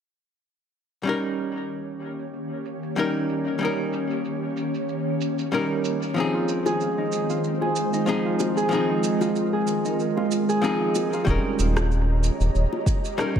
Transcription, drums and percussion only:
1.38 shaker medium
1.55 shaker soft
1.70 shaker soft
2.01 shaker medium
2.19 shaker soft
2.33 shaker soft
2.65 shaker medium
2.83 shaker soft
3.29 shaker medium
3.47 shaker soft
3.61 shaker soft
3.93 shaker medium
4.11 shaker soft
4.25 shaker soft
4.57 shaker medium
4.74 shaker soft
4.89 shaker soft
5.21 shaker medium
5.38 shaker soft
5.53 shaker soft
5.85 shaker medium
6.02 shaker soft
6.17 shaker soft
6.49 shaker medium
6.66 high bongo medium
6.66 shaker soft
6.80 shaker soft
7.12 shaker medium
7.30 shaker soft
7.44 shaker soft
7.62 high bongo medium
7.76 shaker medium
7.93 shaker soft
8.07 shaker soft
8.40 high bongo medium
8.40 shaker medium
8.57 shaker soft
8.72 shaker soft
9.04 shaker medium
9.21 high bongo medium
9.21 shaker soft
9.36 shaker soft
9.67 shaker medium
9.85 shaker soft
10.00 shaker soft
10.17 high bongo medium
10.31 shaker medium
10.49 shaker soft
10.63 shaker soft
10.95 high bongo medium
10.95 shaker medium
11.13 shaker soft
11.27 kick loud
11.27 shaker soft
11.59 shaker medium
11.77 cross-stick medium
11.77 high bongo medium
11.77 shaker soft
11.91 shaker soft
12.23 shaker medium
12.41 shaker soft
12.55 shaker soft
12.73 high bongo medium
12.86 kick loud
12.86 shaker medium
13.05 shaker soft
13.19 cross-stick medium
13.19 shaker soft
13.36 kick loud

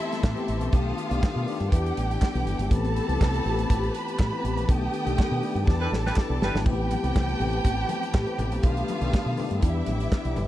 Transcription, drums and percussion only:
0.12 snare soft
0.12 closed hi-hat medium
0.23 kick loud
0.23 snare loud
0.23 clap loud
0.37 closed hi-hat soft
0.48 closed hi-hat medium
0.61 closed hi-hat medium
0.73 kick loud
0.73 closed hi-hat medium
0.98 closed hi-hat medium
1.11 closed hi-hat medium
1.23 kick loud
1.23 snare loud
1.23 clap medium
1.48 open hi-hat medium
1.60 closed hi-hat medium
1.72 kick loud
1.72 closed hi-hat medium
1.86 closed hi-hat soft
1.97 closed hi-hat medium
2.11 closed hi-hat medium
2.22 kick loud
2.22 snare loud
2.22 clap loud
2.35 closed hi-hat soft
2.47 closed hi-hat medium
2.59 closed hi-hat medium
2.71 kick loud
2.71 closed hi-hat medium
2.85 closed hi-hat soft
2.96 closed hi-hat medium
3.09 closed hi-hat medium
3.21 kick loud
3.21 snare medium
3.21 clap loud
3.34 closed hi-hat soft
3.45 open hi-hat medium
3.59 closed hi-hat medium
3.70 kick loud
3.70 closed hi-hat loud
3.84 closed hi-hat soft
3.95 closed hi-hat medium
4.08 closed hi-hat soft
4.19 kick loud
4.19 snare loud
4.19 clap loud
4.45 closed hi-hat medium
4.57 closed hi-hat medium
4.69 kick loud
4.69 closed hi-hat medium
4.94 closed hi-hat medium
5.07 closed hi-hat medium
5.19 kick loud
5.19 snare medium
5.19 clap loud
5.43 open hi-hat soft
5.56 closed hi-hat soft
5.67 kick loud
5.67 snare medium
5.94 snare medium
6.06 snare medium
6.16 kick medium
6.16 snare medium
6.16 clap loud
6.42 snare loud
6.56 snare loud
6.66 kick loud
6.66 splash medium
6.66 low conga medium
6.91 closed hi-hat medium
6.91 high conga medium
7.04 closed hi-hat medium
7.15 kick loud
7.15 snare loud
7.15 clap medium
7.15 muted conga soft
7.28 closed hi-hat soft
7.28 high conga medium
7.40 open hi-hat soft
7.40 muted conga soft
7.40 low conga medium
7.53 closed hi-hat medium
7.65 kick loud
7.65 closed hi-hat loud
7.65 muted conga soft
7.89 closed hi-hat medium
7.89 muted conga soft
7.89 high conga medium
8.03 closed hi-hat medium
8.14 kick loud
8.14 snare loud
8.14 clap loud
8.27 closed hi-hat soft
8.38 closed hi-hat medium
8.38 high conga medium
8.38 low conga medium
8.52 closed hi-hat medium
8.63 kick loud
8.63 closed hi-hat medium
8.63 muted conga soft
8.63 low conga medium
8.77 closed hi-hat soft
8.88 closed hi-hat medium
8.88 high conga medium
9.01 closed hi-hat medium
9.13 kick loud
9.13 snare loud
9.13 clap medium
9.26 high conga medium
9.37 open hi-hat medium
9.37 muted conga soft
9.37 low conga medium
9.51 closed hi-hat medium
9.62 kick loud
9.62 closed hi-hat medium
9.62 muted conga soft
9.86 closed hi-hat medium
9.86 muted conga soft
9.86 high conga medium
10.00 closed hi-hat medium
10.12 kick loud
10.12 snare loud
10.12 clap loud
10.25 closed hi-hat soft
10.36 closed hi-hat medium
10.36 muted conga soft
10.36 high conga medium
10.36 low conga medium

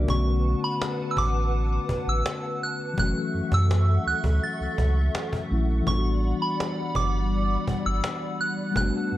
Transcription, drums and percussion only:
0.08 cajon bass loud
0.82 cajon slap loud
1.17 cajon bass medium
1.53 cajon slap soft
1.89 cajon bass medium
2.26 cajon slap loud
2.61 cajon slap soft
2.80 cajon slap soft
2.98 cajon bass loud
3.52 cajon bass medium
3.71 cajon slap loud
4.07 cajon slap soft
4.24 cajon bass medium
4.42 cajon slap soft
4.78 cajon bass medium
5.15 cajon slap loud
5.32 cajon bass medium
5.51 cajon slap soft
5.69 cajon slap soft
5.87 cajon bass loud
6.60 cajon slap loud
6.95 cajon bass medium
7.31 cajon slap soft
7.67 cajon bass loud
8.04 cajon slap loud
8.40 cajon slap soft
8.58 cajon slap soft
8.76 cajon bass loud

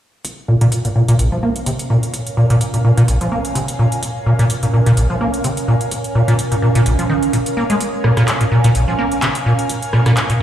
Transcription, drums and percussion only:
0.25 kick loud
0.25 closed hi-hat medium
0.61 closed hi-hat soft
0.72 kick loud
0.72 closed hi-hat medium
0.85 closed hi-hat soft
1.08 closed hi-hat medium
1.19 kick loud
1.19 closed hi-hat medium
1.56 closed hi-hat soft
1.66 kick loud
1.66 closed hi-hat medium
1.79 closed hi-hat medium
2.03 closed hi-hat soft
2.14 kick loud
2.14 closed hi-hat medium
2.27 closed hi-hat soft
2.50 closed hi-hat soft
2.61 kick loud
2.61 closed hi-hat medium
2.74 closed hi-hat soft
2.97 closed hi-hat medium
3.08 kick loud
3.08 closed hi-hat medium
3.21 closed hi-hat soft
3.45 closed hi-hat soft
3.55 kick loud
3.55 closed hi-hat medium
3.68 closed hi-hat medium
3.92 closed hi-hat soft
4.03 kick loud
4.03 closed hi-hat medium
4.39 closed hi-hat soft
4.50 kick loud
4.50 closed hi-hat medium
4.63 closed hi-hat soft
4.86 closed hi-hat soft
4.97 kick loud
4.97 closed hi-hat medium
5.34 closed hi-hat soft
5.44 kick loud
5.44 closed hi-hat medium
5.57 closed hi-hat medium
5.81 closed hi-hat soft
5.91 kick loud
5.91 closed hi-hat medium
6.04 closed hi-hat soft
6.28 closed hi-hat soft
6.39 kick loud
6.39 closed hi-hat medium
6.52 closed hi-hat soft
6.75 closed hi-hat soft
6.86 kick loud
6.86 closed hi-hat medium
6.99 closed hi-hat soft
7.23 closed hi-hat soft
7.33 kick loud
7.33 closed hi-hat medium
7.46 closed hi-hat soft
7.70 closed hi-hat soft
7.80 kick loud
7.80 closed hi-hat medium
8.04 cross-stick medium
8.17 cross-stick medium
8.17 closed hi-hat soft
8.28 kick loud
8.28 clap loud
8.28 closed hi-hat medium
8.41 closed hi-hat soft
8.64 closed hi-hat soft
8.75 kick loud
8.75 closed hi-hat medium
9.12 closed hi-hat soft
9.22 kick loud
9.22 clap loud
9.22 closed hi-hat medium
9.35 closed hi-hat soft
9.59 closed hi-hat soft
9.69 kick loud
9.69 closed hi-hat medium
9.82 closed hi-hat soft
9.93 cross-stick medium
10.06 cross-stick medium
10.06 closed hi-hat soft
10.17 kick loud
10.17 clap loud
10.17 closed hi-hat medium
10.30 closed hi-hat soft

